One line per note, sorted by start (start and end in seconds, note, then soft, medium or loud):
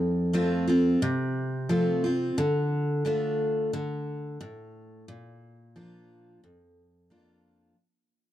0.00 0.95 F2 medium
0.33 0.66 F3 medium
0.33 0.67 A3 medium
0.33 0.67 C4 medium
0.33 0.66 F4 medium
0.68 1.01 C4 medium
0.68 1.00 F4 medium
1.02 2.31 C3 medium
1.69 2.02 F3 medium
1.69 2.03 A3 medium
1.69 2.03 C4 medium
1.69 2.03 F4 medium
2.04 2.37 C4 soft
2.04 2.36 F4 medium
2.38 3.04 D3 medium
3.05 3.69 D3 medium
3.05 3.70 A3 medium
3.05 3.70 D4 medium
3.05 3.70 F4 medium
3.73 4.37 D3 medium
4.41 5.05 A2 medium
5.08 6.37 A#2 medium
5.76 6.40 F3 medium
5.76 6.40 A#3 medium
5.76 6.40 D4 medium
5.76 6.40 F4 medium
6.44 7.72 F2 medium
7.10 7.75 F3 medium
7.10 7.75 A#3 medium
7.10 7.75 D4 medium
7.10 7.76 F4 medium